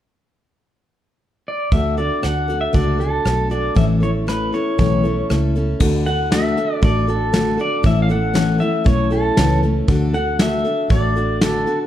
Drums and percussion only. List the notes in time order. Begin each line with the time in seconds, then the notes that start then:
1.72 kick, closed hi-hat
1.97 closed hi-hat
2.23 cross-stick, closed hi-hat
2.49 closed hi-hat
2.74 kick, closed hi-hat
3.01 closed hi-hat
3.26 cross-stick, closed hi-hat
3.51 closed hi-hat
3.76 kick, closed hi-hat
4.03 closed hi-hat
4.28 cross-stick, closed hi-hat
4.54 closed hi-hat
4.79 kick, closed hi-hat
5.05 closed hi-hat
5.30 cross-stick, closed hi-hat
5.55 closed hi-hat
5.80 kick, crash
6.06 closed hi-hat
6.32 snare, closed hi-hat
6.57 closed hi-hat
6.83 kick, closed hi-hat
7.08 closed hi-hat
7.34 snare, closed hi-hat
7.59 closed hi-hat
7.84 kick, closed hi-hat
8.10 closed hi-hat
8.35 snare, closed hi-hat
8.61 closed hi-hat
8.86 kick, closed hi-hat
9.12 closed hi-hat
9.37 snare, closed hi-hat
9.63 closed hi-hat
9.88 kick, closed hi-hat
10.14 closed hi-hat
10.39 snare, closed hi-hat
10.65 closed hi-hat
10.90 kick, closed hi-hat
11.16 closed hi-hat
11.41 snare, closed hi-hat
11.67 closed hi-hat